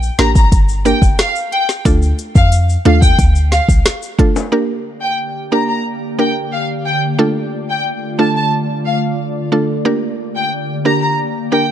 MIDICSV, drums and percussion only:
0, 0, Header, 1, 2, 480
1, 0, Start_track
1, 0, Key_signature, -2, "minor"
1, 0, Tempo, 666667
1, 1336, Time_signature, 4, 2, 24, 8
1, 8436, End_track
2, 0, Start_track
2, 0, Title_t, "Drums"
2, 20, Note_on_c, 9, 82, 55
2, 92, Note_off_c, 9, 82, 0
2, 135, Note_on_c, 9, 38, 117
2, 135, Note_on_c, 9, 42, 53
2, 207, Note_off_c, 9, 38, 0
2, 207, Note_off_c, 9, 42, 0
2, 255, Note_on_c, 9, 36, 104
2, 256, Note_on_c, 9, 82, 84
2, 327, Note_off_c, 9, 36, 0
2, 328, Note_off_c, 9, 82, 0
2, 375, Note_on_c, 9, 36, 101
2, 375, Note_on_c, 9, 82, 69
2, 376, Note_on_c, 9, 42, 90
2, 447, Note_off_c, 9, 36, 0
2, 447, Note_off_c, 9, 82, 0
2, 448, Note_off_c, 9, 42, 0
2, 494, Note_on_c, 9, 82, 58
2, 566, Note_off_c, 9, 82, 0
2, 616, Note_on_c, 9, 42, 47
2, 617, Note_on_c, 9, 82, 62
2, 688, Note_off_c, 9, 42, 0
2, 689, Note_off_c, 9, 82, 0
2, 734, Note_on_c, 9, 36, 100
2, 738, Note_on_c, 9, 82, 77
2, 806, Note_off_c, 9, 36, 0
2, 810, Note_off_c, 9, 82, 0
2, 856, Note_on_c, 9, 42, 78
2, 857, Note_on_c, 9, 37, 104
2, 857, Note_on_c, 9, 38, 126
2, 857, Note_on_c, 9, 82, 63
2, 928, Note_off_c, 9, 42, 0
2, 929, Note_off_c, 9, 37, 0
2, 929, Note_off_c, 9, 38, 0
2, 929, Note_off_c, 9, 82, 0
2, 976, Note_on_c, 9, 82, 54
2, 1048, Note_off_c, 9, 82, 0
2, 1098, Note_on_c, 9, 42, 52
2, 1170, Note_off_c, 9, 42, 0
2, 1217, Note_on_c, 9, 38, 69
2, 1218, Note_on_c, 9, 82, 67
2, 1289, Note_off_c, 9, 38, 0
2, 1290, Note_off_c, 9, 82, 0
2, 1336, Note_on_c, 9, 36, 117
2, 1336, Note_on_c, 9, 42, 89
2, 1336, Note_on_c, 9, 82, 77
2, 1408, Note_off_c, 9, 36, 0
2, 1408, Note_off_c, 9, 42, 0
2, 1408, Note_off_c, 9, 82, 0
2, 1456, Note_on_c, 9, 82, 51
2, 1528, Note_off_c, 9, 82, 0
2, 1575, Note_on_c, 9, 42, 59
2, 1575, Note_on_c, 9, 82, 50
2, 1647, Note_off_c, 9, 42, 0
2, 1647, Note_off_c, 9, 82, 0
2, 1696, Note_on_c, 9, 36, 101
2, 1696, Note_on_c, 9, 82, 81
2, 1768, Note_off_c, 9, 36, 0
2, 1768, Note_off_c, 9, 82, 0
2, 1814, Note_on_c, 9, 42, 72
2, 1816, Note_on_c, 9, 82, 93
2, 1886, Note_off_c, 9, 42, 0
2, 1888, Note_off_c, 9, 82, 0
2, 1940, Note_on_c, 9, 82, 58
2, 2012, Note_off_c, 9, 82, 0
2, 2054, Note_on_c, 9, 42, 52
2, 2126, Note_off_c, 9, 42, 0
2, 2175, Note_on_c, 9, 36, 97
2, 2177, Note_on_c, 9, 82, 88
2, 2247, Note_off_c, 9, 36, 0
2, 2249, Note_off_c, 9, 82, 0
2, 2294, Note_on_c, 9, 36, 103
2, 2295, Note_on_c, 9, 42, 86
2, 2296, Note_on_c, 9, 82, 69
2, 2366, Note_off_c, 9, 36, 0
2, 2367, Note_off_c, 9, 42, 0
2, 2368, Note_off_c, 9, 82, 0
2, 2415, Note_on_c, 9, 82, 59
2, 2487, Note_off_c, 9, 82, 0
2, 2534, Note_on_c, 9, 38, 72
2, 2536, Note_on_c, 9, 42, 48
2, 2538, Note_on_c, 9, 82, 60
2, 2606, Note_off_c, 9, 38, 0
2, 2608, Note_off_c, 9, 42, 0
2, 2610, Note_off_c, 9, 82, 0
2, 2654, Note_on_c, 9, 36, 97
2, 2659, Note_on_c, 9, 82, 73
2, 2726, Note_off_c, 9, 36, 0
2, 2731, Note_off_c, 9, 82, 0
2, 2776, Note_on_c, 9, 42, 77
2, 2777, Note_on_c, 9, 37, 105
2, 2777, Note_on_c, 9, 38, 121
2, 2778, Note_on_c, 9, 82, 63
2, 2848, Note_off_c, 9, 42, 0
2, 2849, Note_off_c, 9, 37, 0
2, 2849, Note_off_c, 9, 38, 0
2, 2850, Note_off_c, 9, 82, 0
2, 2897, Note_on_c, 9, 82, 52
2, 2969, Note_off_c, 9, 82, 0
2, 3015, Note_on_c, 9, 36, 93
2, 3018, Note_on_c, 9, 42, 53
2, 3087, Note_off_c, 9, 36, 0
2, 3090, Note_off_c, 9, 42, 0
2, 3140, Note_on_c, 9, 65, 69
2, 3140, Note_on_c, 9, 82, 70
2, 3212, Note_off_c, 9, 65, 0
2, 3212, Note_off_c, 9, 82, 0
2, 8436, End_track
0, 0, End_of_file